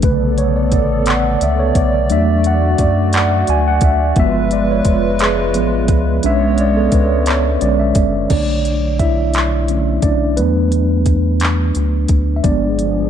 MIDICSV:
0, 0, Header, 1, 5, 480
1, 0, Start_track
1, 0, Tempo, 689655
1, 21, Time_signature, 6, 3, 24, 8
1, 9117, End_track
2, 0, Start_track
2, 0, Title_t, "Tine electric piano"
2, 0, Program_c, 0, 4
2, 0, Control_c, 0, 64, 127
2, 21, Note_on_c, 0, 50, 55
2, 24, Note_on_c, 0, 57, 50
2, 26, Note_on_c, 0, 49, 64
2, 28, Note_on_c, 0, 71, 84
2, 31, Control_c, 0, 64, 0
2, 155, Control_c, 0, 64, 127
2, 248, Note_off_c, 0, 71, 0
2, 266, Note_on_c, 0, 73, 84
2, 387, Note_off_c, 0, 73, 0
2, 391, Note_on_c, 0, 74, 66
2, 498, Note_off_c, 0, 74, 0
2, 512, Note_on_c, 0, 74, 76
2, 713, Note_off_c, 0, 50, 0
2, 715, Note_off_c, 0, 57, 0
2, 716, Note_off_c, 0, 49, 0
2, 753, Note_off_c, 0, 74, 0
2, 755, Note_on_c, 0, 78, 85
2, 972, Note_off_c, 0, 78, 0
2, 992, Note_on_c, 0, 76, 83
2, 1098, Note_off_c, 0, 76, 0
2, 1110, Note_on_c, 0, 73, 85
2, 1229, Note_off_c, 0, 73, 0
2, 1233, Note_on_c, 0, 74, 76
2, 1458, Note_on_c, 0, 54, 55
2, 1462, Note_on_c, 0, 57, 57
2, 1465, Note_on_c, 0, 62, 69
2, 1469, Control_c, 0, 64, 0
2, 1474, Note_off_c, 0, 74, 0
2, 1475, Note_on_c, 0, 76, 101
2, 1585, Control_c, 0, 64, 127
2, 1715, Note_off_c, 0, 76, 0
2, 1717, Note_on_c, 0, 78, 88
2, 1953, Note_on_c, 0, 74, 81
2, 1956, Note_off_c, 0, 78, 0
2, 2152, Note_off_c, 0, 54, 0
2, 2154, Note_off_c, 0, 57, 0
2, 2156, Note_off_c, 0, 62, 0
2, 2194, Note_off_c, 0, 74, 0
2, 2195, Note_on_c, 0, 78, 97
2, 2435, Note_off_c, 0, 78, 0
2, 2435, Note_on_c, 0, 80, 102
2, 2551, Note_off_c, 0, 80, 0
2, 2559, Note_on_c, 0, 78, 103
2, 2609, Note_off_c, 0, 78, 0
2, 2675, Note_on_c, 0, 76, 83
2, 2903, Note_on_c, 0, 53, 63
2, 2910, Control_c, 0, 64, 0
2, 2910, Note_on_c, 0, 56, 54
2, 2911, Note_on_c, 0, 59, 69
2, 2912, Note_off_c, 0, 76, 0
2, 2920, Note_on_c, 0, 76, 109
2, 3025, Control_c, 0, 64, 127
2, 3151, Note_on_c, 0, 74, 90
2, 3158, Note_off_c, 0, 76, 0
2, 3270, Note_off_c, 0, 74, 0
2, 3276, Note_on_c, 0, 73, 82
2, 3392, Note_off_c, 0, 73, 0
2, 3394, Note_on_c, 0, 71, 77
2, 3594, Note_off_c, 0, 53, 0
2, 3598, Note_off_c, 0, 56, 0
2, 3598, Note_off_c, 0, 59, 0
2, 3631, Note_on_c, 0, 68, 68
2, 3635, Note_off_c, 0, 71, 0
2, 3849, Note_off_c, 0, 68, 0
2, 3858, Note_on_c, 0, 53, 54
2, 3860, Note_on_c, 0, 56, 46
2, 3864, Note_on_c, 0, 59, 51
2, 4075, Note_off_c, 0, 53, 0
2, 4076, Note_off_c, 0, 56, 0
2, 4079, Note_off_c, 0, 59, 0
2, 4339, Note_on_c, 0, 62, 55
2, 4345, Note_on_c, 0, 56, 52
2, 4348, Control_c, 0, 64, 0
2, 4348, Note_on_c, 0, 61, 60
2, 4356, Note_on_c, 0, 76, 113
2, 4488, Control_c, 0, 64, 127
2, 4594, Note_on_c, 0, 74, 99
2, 4596, Note_off_c, 0, 76, 0
2, 4711, Note_off_c, 0, 74, 0
2, 4711, Note_on_c, 0, 69, 77
2, 4827, Note_on_c, 0, 71, 77
2, 4830, Note_off_c, 0, 69, 0
2, 5069, Note_on_c, 0, 73, 89
2, 5071, Note_off_c, 0, 71, 0
2, 5175, Note_off_c, 0, 73, 0
2, 5296, Note_off_c, 0, 56, 0
2, 5300, Note_off_c, 0, 61, 0
2, 5302, Note_on_c, 0, 50, 45
2, 5304, Note_on_c, 0, 74, 89
2, 5305, Note_on_c, 0, 56, 50
2, 5308, Note_on_c, 0, 61, 53
2, 5357, Note_off_c, 0, 74, 0
2, 5424, Note_on_c, 0, 76, 78
2, 5518, Note_off_c, 0, 50, 0
2, 5519, Note_off_c, 0, 56, 0
2, 5521, Note_off_c, 0, 61, 0
2, 5532, Note_off_c, 0, 76, 0
2, 5752, Note_off_c, 0, 62, 0
2, 5776, Note_on_c, 0, 74, 74
2, 5782, Note_on_c, 0, 50, 51
2, 5787, Note_on_c, 0, 57, 47
2, 5790, Note_on_c, 0, 62, 62
2, 5790, Note_on_c, 0, 73, 57
2, 5791, Control_c, 0, 64, 0
2, 5918, Control_c, 0, 64, 127
2, 6231, Note_off_c, 0, 74, 0
2, 6238, Note_off_c, 0, 62, 0
2, 6260, Note_on_c, 0, 76, 91
2, 6272, Note_on_c, 0, 64, 65
2, 6713, Note_off_c, 0, 76, 0
2, 6719, Note_off_c, 0, 64, 0
2, 6735, Note_off_c, 0, 50, 0
2, 6741, Note_off_c, 0, 57, 0
2, 6744, Note_on_c, 0, 50, 43
2, 6749, Note_on_c, 0, 57, 38
2, 6751, Note_on_c, 0, 61, 44
2, 6959, Note_off_c, 0, 50, 0
2, 6962, Note_off_c, 0, 57, 0
2, 6963, Note_off_c, 0, 61, 0
2, 6977, Note_on_c, 0, 74, 87
2, 6992, Note_on_c, 0, 62, 72
2, 7086, Note_off_c, 0, 74, 0
2, 7098, Note_off_c, 0, 62, 0
2, 7198, Note_off_c, 0, 73, 0
2, 7216, Note_on_c, 0, 71, 92
2, 7224, Note_on_c, 0, 54, 58
2, 7225, Note_on_c, 0, 57, 50
2, 7231, Control_c, 0, 64, 0
2, 7232, Note_on_c, 0, 59, 70
2, 7233, Note_on_c, 0, 62, 56
2, 7336, Control_c, 0, 64, 127
2, 7915, Note_off_c, 0, 54, 0
2, 7915, Note_off_c, 0, 57, 0
2, 7919, Note_off_c, 0, 62, 0
2, 8391, Note_off_c, 0, 71, 0
2, 8399, Note_off_c, 0, 59, 0
2, 8605, Note_on_c, 0, 76, 67
2, 8656, Note_on_c, 0, 74, 89
2, 8658, Note_off_c, 0, 76, 0
2, 8663, Note_on_c, 0, 53, 55
2, 8665, Note_on_c, 0, 56, 52
2, 8670, Note_on_c, 0, 59, 57
2, 8671, Control_c, 0, 64, 0
2, 8672, Note_on_c, 0, 62, 74
2, 8778, Control_c, 0, 64, 127
2, 8981, Note_off_c, 0, 53, 0
2, 8982, Note_off_c, 0, 56, 0
2, 8985, Note_off_c, 0, 59, 0
2, 9117, Note_off_c, 0, 62, 0
2, 9117, Note_off_c, 0, 74, 0
2, 9117, End_track
3, 0, Start_track
3, 0, Title_t, "Analog synth pad"
3, 0, Program_c, 1, 89
3, 21, Note_on_c, 1, 74, 83
3, 24, Note_on_c, 1, 59, 82
3, 24, Note_on_c, 1, 69, 72
3, 1448, Note_off_c, 1, 59, 0
3, 1448, Note_off_c, 1, 69, 0
3, 1459, Note_on_c, 1, 66, 67
3, 1465, Note_on_c, 1, 57, 78
3, 2873, Note_off_c, 1, 74, 0
3, 2885, Note_off_c, 1, 66, 0
3, 2889, Note_off_c, 1, 57, 0
3, 2897, Note_on_c, 1, 65, 75
3, 2898, Note_on_c, 1, 56, 76
3, 2900, Note_on_c, 1, 71, 90
3, 4323, Note_off_c, 1, 56, 0
3, 4325, Note_off_c, 1, 65, 0
3, 4326, Note_off_c, 1, 71, 0
3, 4332, Note_on_c, 1, 56, 82
3, 4333, Note_on_c, 1, 59, 74
3, 4335, Note_on_c, 1, 73, 92
3, 5762, Note_off_c, 1, 56, 0
3, 5763, Note_off_c, 1, 59, 0
3, 5764, Note_off_c, 1, 73, 0
3, 8655, Note_on_c, 1, 68, 78
3, 8657, Note_on_c, 1, 59, 68
3, 8658, Note_on_c, 1, 53, 79
3, 9117, Note_off_c, 1, 53, 0
3, 9117, Note_off_c, 1, 59, 0
3, 9117, Note_off_c, 1, 68, 0
3, 9117, End_track
4, 0, Start_track
4, 0, Title_t, "Analog synth bass"
4, 0, Program_c, 2, 38
4, 27, Note_on_c, 2, 35, 99
4, 504, Note_on_c, 2, 33, 101
4, 515, Note_off_c, 2, 35, 0
4, 955, Note_off_c, 2, 33, 0
4, 986, Note_on_c, 2, 37, 84
4, 1200, Note_off_c, 2, 37, 0
4, 1224, Note_on_c, 2, 35, 80
4, 1466, Note_on_c, 2, 40, 107
4, 1476, Note_off_c, 2, 35, 0
4, 1916, Note_off_c, 2, 40, 0
4, 1946, Note_on_c, 2, 42, 97
4, 2396, Note_off_c, 2, 42, 0
4, 2428, Note_on_c, 2, 38, 96
4, 2641, Note_off_c, 2, 38, 0
4, 2660, Note_on_c, 2, 38, 81
4, 2877, Note_off_c, 2, 38, 0
4, 2901, Note_on_c, 2, 31, 114
4, 3353, Note_off_c, 2, 31, 0
4, 3381, Note_on_c, 2, 29, 93
4, 3864, Note_on_c, 2, 33, 82
4, 3874, Note_off_c, 2, 29, 0
4, 4098, Note_on_c, 2, 37, 90
4, 4109, Note_off_c, 2, 33, 0
4, 4316, Note_off_c, 2, 37, 0
4, 4346, Note_on_c, 2, 35, 104
4, 4796, Note_off_c, 2, 35, 0
4, 4820, Note_on_c, 2, 37, 84
4, 5273, Note_off_c, 2, 37, 0
4, 5305, Note_on_c, 2, 35, 95
4, 5519, Note_off_c, 2, 35, 0
4, 5541, Note_on_c, 2, 30, 80
4, 5757, Note_off_c, 2, 30, 0
4, 5782, Note_on_c, 2, 35, 103
4, 6954, Note_off_c, 2, 35, 0
4, 6982, Note_on_c, 2, 35, 73
4, 7229, Note_on_c, 2, 40, 104
4, 7239, Note_off_c, 2, 35, 0
4, 8157, Note_off_c, 2, 40, 0
4, 8187, Note_on_c, 2, 38, 92
4, 8401, Note_off_c, 2, 38, 0
4, 8422, Note_on_c, 2, 38, 84
4, 8638, Note_off_c, 2, 38, 0
4, 8663, Note_on_c, 2, 31, 100
4, 9117, Note_off_c, 2, 31, 0
4, 9117, End_track
5, 0, Start_track
5, 0, Title_t, "Drums"
5, 17, Note_on_c, 9, 42, 68
5, 22, Note_on_c, 9, 36, 90
5, 87, Note_off_c, 9, 42, 0
5, 91, Note_off_c, 9, 36, 0
5, 262, Note_on_c, 9, 42, 50
5, 332, Note_off_c, 9, 42, 0
5, 499, Note_on_c, 9, 42, 62
5, 501, Note_on_c, 9, 36, 64
5, 568, Note_off_c, 9, 42, 0
5, 571, Note_off_c, 9, 36, 0
5, 736, Note_on_c, 9, 42, 65
5, 756, Note_on_c, 9, 39, 100
5, 806, Note_off_c, 9, 42, 0
5, 825, Note_off_c, 9, 39, 0
5, 982, Note_on_c, 9, 42, 59
5, 1052, Note_off_c, 9, 42, 0
5, 1219, Note_on_c, 9, 42, 78
5, 1220, Note_on_c, 9, 36, 93
5, 1289, Note_off_c, 9, 42, 0
5, 1290, Note_off_c, 9, 36, 0
5, 1459, Note_on_c, 9, 42, 66
5, 1529, Note_off_c, 9, 42, 0
5, 1699, Note_on_c, 9, 42, 47
5, 1769, Note_off_c, 9, 42, 0
5, 1938, Note_on_c, 9, 42, 67
5, 1941, Note_on_c, 9, 36, 72
5, 2007, Note_off_c, 9, 42, 0
5, 2010, Note_off_c, 9, 36, 0
5, 2177, Note_on_c, 9, 42, 70
5, 2196, Note_on_c, 9, 39, 105
5, 2246, Note_off_c, 9, 42, 0
5, 2266, Note_off_c, 9, 39, 0
5, 2418, Note_on_c, 9, 42, 56
5, 2487, Note_off_c, 9, 42, 0
5, 2651, Note_on_c, 9, 42, 74
5, 2657, Note_on_c, 9, 36, 100
5, 2721, Note_off_c, 9, 42, 0
5, 2726, Note_off_c, 9, 36, 0
5, 2894, Note_on_c, 9, 42, 58
5, 2899, Note_on_c, 9, 36, 105
5, 2964, Note_off_c, 9, 42, 0
5, 2968, Note_off_c, 9, 36, 0
5, 3138, Note_on_c, 9, 42, 51
5, 3207, Note_off_c, 9, 42, 0
5, 3373, Note_on_c, 9, 42, 69
5, 3378, Note_on_c, 9, 36, 71
5, 3443, Note_off_c, 9, 42, 0
5, 3447, Note_off_c, 9, 36, 0
5, 3614, Note_on_c, 9, 42, 70
5, 3633, Note_on_c, 9, 39, 115
5, 3683, Note_off_c, 9, 42, 0
5, 3703, Note_off_c, 9, 39, 0
5, 3857, Note_on_c, 9, 42, 56
5, 3926, Note_off_c, 9, 42, 0
5, 4094, Note_on_c, 9, 42, 77
5, 4096, Note_on_c, 9, 36, 98
5, 4163, Note_off_c, 9, 42, 0
5, 4166, Note_off_c, 9, 36, 0
5, 4336, Note_on_c, 9, 42, 73
5, 4406, Note_off_c, 9, 42, 0
5, 4578, Note_on_c, 9, 42, 52
5, 4648, Note_off_c, 9, 42, 0
5, 4815, Note_on_c, 9, 42, 69
5, 4818, Note_on_c, 9, 36, 69
5, 4885, Note_off_c, 9, 42, 0
5, 4888, Note_off_c, 9, 36, 0
5, 5053, Note_on_c, 9, 42, 67
5, 5073, Note_on_c, 9, 39, 106
5, 5123, Note_off_c, 9, 42, 0
5, 5142, Note_off_c, 9, 39, 0
5, 5298, Note_on_c, 9, 42, 55
5, 5367, Note_off_c, 9, 42, 0
5, 5533, Note_on_c, 9, 42, 79
5, 5537, Note_on_c, 9, 36, 94
5, 5603, Note_off_c, 9, 42, 0
5, 5606, Note_off_c, 9, 36, 0
5, 5777, Note_on_c, 9, 42, 61
5, 5778, Note_on_c, 9, 49, 72
5, 5780, Note_on_c, 9, 36, 99
5, 5846, Note_off_c, 9, 42, 0
5, 5847, Note_off_c, 9, 49, 0
5, 5849, Note_off_c, 9, 36, 0
5, 6021, Note_on_c, 9, 42, 47
5, 6090, Note_off_c, 9, 42, 0
5, 6260, Note_on_c, 9, 36, 68
5, 6260, Note_on_c, 9, 42, 59
5, 6330, Note_off_c, 9, 36, 0
5, 6330, Note_off_c, 9, 42, 0
5, 6498, Note_on_c, 9, 42, 63
5, 6517, Note_on_c, 9, 39, 98
5, 6567, Note_off_c, 9, 42, 0
5, 6587, Note_off_c, 9, 39, 0
5, 6740, Note_on_c, 9, 42, 50
5, 6810, Note_off_c, 9, 42, 0
5, 6976, Note_on_c, 9, 42, 74
5, 6978, Note_on_c, 9, 36, 89
5, 7046, Note_off_c, 9, 42, 0
5, 7048, Note_off_c, 9, 36, 0
5, 7219, Note_on_c, 9, 42, 63
5, 7289, Note_off_c, 9, 42, 0
5, 7460, Note_on_c, 9, 42, 50
5, 7529, Note_off_c, 9, 42, 0
5, 7696, Note_on_c, 9, 42, 61
5, 7699, Note_on_c, 9, 36, 64
5, 7765, Note_off_c, 9, 42, 0
5, 7768, Note_off_c, 9, 36, 0
5, 7934, Note_on_c, 9, 42, 60
5, 7954, Note_on_c, 9, 39, 97
5, 8004, Note_off_c, 9, 42, 0
5, 8023, Note_off_c, 9, 39, 0
5, 8176, Note_on_c, 9, 42, 48
5, 8246, Note_off_c, 9, 42, 0
5, 8411, Note_on_c, 9, 42, 68
5, 8417, Note_on_c, 9, 36, 77
5, 8481, Note_off_c, 9, 42, 0
5, 8486, Note_off_c, 9, 36, 0
5, 8657, Note_on_c, 9, 42, 64
5, 8660, Note_on_c, 9, 36, 91
5, 8727, Note_off_c, 9, 42, 0
5, 8730, Note_off_c, 9, 36, 0
5, 8900, Note_on_c, 9, 42, 51
5, 8970, Note_off_c, 9, 42, 0
5, 9117, End_track
0, 0, End_of_file